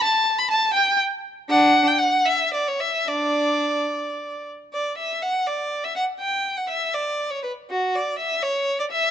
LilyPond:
\new Staff \with { instrumentName = "Violin" } { \time 6/8 \key d \major \tempo 4. = 81 << { a''8. b''16 a''8 g''8 r4 | fis''8. g''16 fis''8 e''8 d''16 cis''16 e''8 | d''2~ d''8 r8 | d''8 e''8 fis''8 d''8. e''16 fis''8 |
g''8. fis''16 e''8 d''8. cis''16 b'8 | fis'8 d''8 e''8 cis''8. d''16 e''8 | } \\ { r2. | d'8. r2 r16 | d'4. r4. | r2. |
r2. | r2. | } >> }